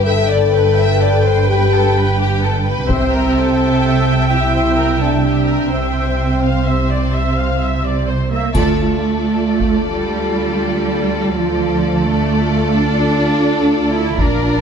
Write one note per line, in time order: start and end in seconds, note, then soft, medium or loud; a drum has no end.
0.06 2.85 G1 soft
0.06 2.85 G2 soft
0.06 1.45 A4 medium
0.06 2.85 B4 soft
0.06 0.30 E5 medium
0.06 2.85 G5 soft
0.29 0.53 D5 soft
0.55 0.78 B4 soft
0.78 1.01 E5 medium
1.02 1.25 D5 soft
1.25 1.48 C5 soft
1.48 2.19 G4 medium
1.48 1.71 B4 soft
1.73 1.96 A4 soft
1.97 2.20 B4 soft
2.19 2.42 G4 soft
2.43 2.66 A4 soft
2.66 2.89 B4 soft
2.88 5.67 C2 soft
2.88 5.68 C3 soft
2.88 4.26 C4 medium
2.88 3.13 C5 soft
2.88 5.68 E5 soft
2.88 5.68 G5 soft
2.88 taiko soft
3.12 3.36 A#4 soft
3.36 4.30 A4 soft
4.30 5.01 E4 medium
4.30 4.54 G4 soft
4.54 4.77 C5 soft
4.77 5.00 A#4 soft
5.00 5.70 D4 soft
5.00 5.24 A4 soft
5.24 5.48 G4 soft
5.48 5.72 A#4 soft
5.71 8.30 C2 soft
5.71 8.27 C3 soft
5.71 7.84 C4 soft
5.71 8.19 C5 soft
5.71 6.34 E5 soft
5.71 6.34 G5 soft
6.43 6.65 F5 soft
6.66 6.89 E5 soft
6.90 7.13 D5 soft
7.14 7.37 E5 soft
7.38 7.61 F5 soft
7.62 7.84 E5 soft
7.84 8.07 D5 soft
8.08 8.31 C5 soft
8.31 8.53 A#3 soft
8.31 8.54 E5 soft
8.54 11.33 D2 soft
8.54 9.91 A3 medium
8.54 11.33 F4 soft
8.54 11.33 A4 soft
8.54 11.33 D5 soft
8.54 taiko soft
8.54 triangle soft
9.61 taiko soft
9.95 11.34 G3 soft
11.36 14.14 D2 soft
11.36 12.07 F3 soft
11.36 14.15 F4 soft
11.36 14.14 A4 soft
11.36 14.15 A4 soft
11.36 14.15 D5 soft
12.06 12.77 A3 soft
12.76 13.95 D4 medium
13.94 14.18 E4 soft
14.18 14.61 A#1 soft
14.18 14.61 D4 soft
14.18 14.61 F4 soft
14.18 14.61 A#4 soft
14.18 14.61 D5 soft
14.18 taiko soft